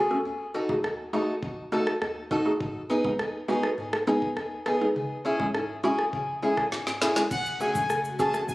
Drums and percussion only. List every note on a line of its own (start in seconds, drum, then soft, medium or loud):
0.69 kick medium
0.84 cross-stick medium
1.43 kick loud
1.87 cross-stick medium
2.02 cross-stick medium
2.31 kick medium
2.61 kick loud
3.05 kick medium
3.19 cross-stick medium
3.63 cross-stick medium
3.93 cross-stick loud
4.22 kick medium
4.37 cross-stick medium
4.66 cross-stick medium
5.40 kick medium
5.54 cross-stick medium
5.99 cross-stick medium
6.13 kick medium
6.57 kick medium
6.57 cross-stick medium
6.72 snare medium
6.87 snare medium
7.02 snare medium
7.16 snare medium
7.31 kick loud
7.31 crash medium
7.31 shaker medium
7.46 shaker medium
7.60 shaker soft
7.75 kick medium
7.75 shaker medium
7.90 cross-stick medium
7.90 shaker medium
8.05 shaker medium
8.19 shaker medium
8.34 cross-stick medium
8.34 shaker medium
8.49 shaker medium